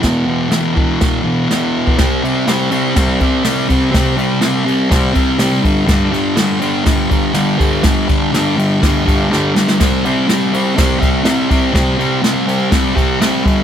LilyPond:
<<
  \new Staff \with { instrumentName = "Distorted electric guitar" } { \clef bass \time 4/4 \key c \lydian \tempo 4 = 123 <e, b, e>8 <b, e>8 <e, b, e>8 <b, e>4 <b, e>8 <e, b, e>4 | <c g c'>8 <c g c'>8 <c g c'>8 <c g c'>8 <c g c'>8 <c g c'>8 <c g c'>8 <c g c'>8 | <c g c'>8 <c g c'>8 <c g c'>8 <c g c'>8 <c g c'>8 <c g c'>8 <c g c'>8 <g, d g>8 | <g, d g>8 <g, d g>8 <g, d g>8 <g, d g>8 <g, d g>8 <g, d g>8 <g, d g>8 <g, d g>8 |
<g, d g>8 <g, d g>8 <g, d g>8 <g, d g>8 <g, d g>8 <g, d g>8 <g, d g>8 <g, d g>8 | <c g c'>8 <c g c'>8 <c g c'>8 <c g c'>8 <c g c'>8 <c g c'>8 <c g c'>8 <c g c'>8 | <c g c'>8 <c g c'>8 <c g c'>8 <c g c'>8 <c g c'>8 <c g c'>8 <c g c'>8 <g, d g>8 | }
  \new DrumStaff \with { instrumentName = "Drums" } \drummode { \time 4/4 <cymc bd sn>4 <cymc sn>8 bd8 <cymc bd sn>4 <cymc sn>8. bd16 | <cymc bd sn>8 cymr8 <cymr sn>8 cymr8 <bd cymr sn>8 <bd cymr>8 <cymr sn>8 <bd cymr>8 | <bd cymr sn>8 cymr8 <cymr sn>8 cymr8 <bd cymr sn>8 <bd cymr>8 <cymr sn>8 <bd cymr>8 | <cymc bd sn>8 cymr8 <cymr sn>8 cymr8 <bd cymr sn>8 <bd cymr>8 <cymr sn>8 <bd cymr>8 |
<bd cymr sn>8 <bd cymr>8 <cymr sn>8 cymr8 <bd cymr sn>8 <bd cymr>8 sn8 sn16 sn16 | <cymc bd cymr sn>8 cymr8 <cymr sn>8 cymr8 <bd cymr sn>8 <bd cymr>8 <cymr sn>8 <bd cymr>8 | <bd cymr sn>8 cymr8 <cymr sn>8 cymr8 <bd cymr sn>8 <bd cymr>8 <cymr sn>8 <bd cymr>8 | }
>>